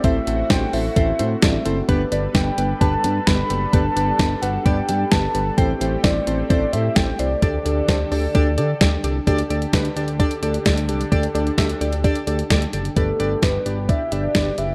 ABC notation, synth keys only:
X:1
M:4/4
L:1/8
Q:1/4=130
K:G
V:1 name="Synth keys"
[CEAc] [CEAc] [CEAc] [CEAc] [CEAc] [CEAc] [CEAd] [CEAc] | [B,DGB] [B,DGB] [B,DGB] [B,DGB] [B,DGB] [B,DGB] [B,DGB] [B,DGB] | [B,DGB] [B,DGB] [B,DGB] [B,DGB] [B,DGd] [B,DGd] [B,DGB] [B,DGB] | [CEAc] [CEAc] [CEAc] [CEAc] [CEAc] [CEAc] [CEAd] [CEAc] |
[DGAd] [DGAd] [DGAc] [DGAd] [DGAd] [DGAd] [DGAd] [DGAd] | [DGAd] [DGAd] [DGAB] [DGAd] [DGAd] [DGAd] [DGAd] [DGAd] | [DGAd] [DGAd] [DGAe] [DGAd] [DGAd] [DGAd] [DGAd] [DGAd] | [DGBd] [DGBd] [DGBd] [DGBd] [DGBd] [DGBe] [DGBd] [DGBd] |]